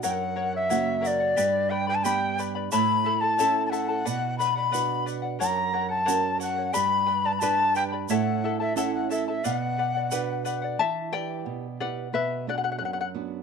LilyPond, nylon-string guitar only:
\new Staff \with { instrumentName = "Nylon-string guitar" } { \time 2/4 \key b \minor \tempo 4 = 89 fis,4 <cis ais fis'>4 | g,4 <b d' g'>4 | a,4 <cis' e' a'>4 | b,4 <d' fis' b'>4 |
fis,4 <cis' fis' ais'>4 | g,4 <d' g' b'>4 | a,4 <cis' e' a'>4 | b,4 <d' fis' b'>4 |
e8 <e' g' b'>8 b,8 <e' g' b'>8 | b,8 <b d' fis'>8 fis,8 <b d' fis'>8 | }